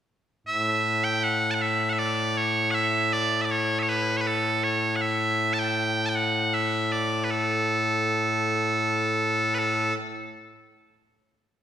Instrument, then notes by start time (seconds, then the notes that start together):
bagpipes
0.47 A2 E5
1.04 G5
1.23 F#5
1.51 F#5 A5
1.61 E5
1.89 E5 F#5
1.99 D5
2.37 C#5
2.71 E5 F#5
3.13 D5
3.41 D5 E5
3.51 C#5
3.79 C#5 E5
3.89 B4
4.17 B4 C#5
4.27 A4
4.63 C#5
4.96 F#5
5.01 E5
5.53 A5
5.59 G5
6.06 G5 A5
6.15 F#5
6.54 E5
6.92 D5
7.24 B4
7.30 A4
9.54 B4
9.59 A4